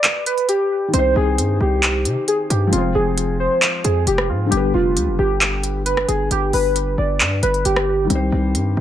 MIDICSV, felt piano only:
0, 0, Header, 1, 2, 480
1, 0, Start_track
1, 0, Tempo, 447761
1, 1003, Time_signature, 4, 2, 24, 8
1, 9440, End_track
2, 0, Start_track
2, 0, Title_t, "Felt piano"
2, 0, Program_c, 0, 0
2, 944, Note_on_c, 0, 51, 62
2, 1002, Note_on_c, 0, 60, 61
2, 1031, Note_on_c, 0, 63, 59
2, 1060, Note_on_c, 0, 72, 76
2, 1193, Control_c, 0, 64, 127
2, 2855, Note_off_c, 0, 51, 0
2, 2864, Note_on_c, 0, 53, 67
2, 2884, Note_off_c, 0, 60, 0
2, 2893, Note_on_c, 0, 56, 59
2, 2899, Note_off_c, 0, 63, 0
2, 2914, Note_off_c, 0, 72, 0
2, 2922, Note_on_c, 0, 60, 66
2, 2938, Control_c, 0, 64, 0
2, 2951, Note_on_c, 0, 68, 64
2, 2979, Note_on_c, 0, 72, 70
2, 3109, Control_c, 0, 64, 127
2, 4775, Note_off_c, 0, 53, 0
2, 4782, Note_on_c, 0, 50, 67
2, 4789, Note_off_c, 0, 56, 0
2, 4804, Note_off_c, 0, 60, 0
2, 4811, Note_on_c, 0, 55, 62
2, 4819, Note_off_c, 0, 68, 0
2, 4833, Note_off_c, 0, 72, 0
2, 4840, Note_on_c, 0, 59, 59
2, 4858, Control_c, 0, 64, 0
2, 4869, Note_on_c, 0, 67, 57
2, 4898, Note_on_c, 0, 71, 77
2, 5057, Control_c, 0, 64, 127
2, 8610, Note_off_c, 0, 50, 0
2, 8623, Note_on_c, 0, 51, 63
2, 8624, Note_off_c, 0, 55, 0
2, 8639, Note_off_c, 0, 59, 0
2, 8652, Note_on_c, 0, 55, 61
2, 8653, Note_off_c, 0, 67, 0
2, 8668, Note_off_c, 0, 71, 0
2, 8681, Note_on_c, 0, 60, 61
2, 8696, Control_c, 0, 64, 0
2, 8710, Note_on_c, 0, 67, 57
2, 8739, Note_on_c, 0, 72, 72
2, 8872, Control_c, 0, 64, 127
2, 9440, Note_off_c, 0, 51, 0
2, 9440, Note_off_c, 0, 55, 0
2, 9440, Note_off_c, 0, 60, 0
2, 9440, Note_off_c, 0, 67, 0
2, 9440, Note_off_c, 0, 72, 0
2, 9440, End_track
0, 0, End_of_file